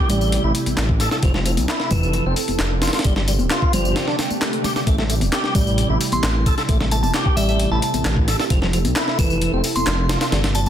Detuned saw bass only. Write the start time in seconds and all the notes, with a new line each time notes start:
0.10 A1
0.44 A1
0.67 A1
0.78 A1
1.23 F1
1.58 C2
1.91 F1
2.26 F1
2.49 F1
2.60 F1
3.05 G1
3.39 D1
3.73 G1
4.87 A1
5.21 E1
5.55 A1
5.89 A1
6.12 A1
6.23 A1
6.69 A1
7.03 E1
7.37 A1
7.71 A1
7.94 A1
8.05 A1
8.50 F1
8.85 C2
9.19 F1
9.53 F1
9.76 F1
9.87 F1
10.32 G1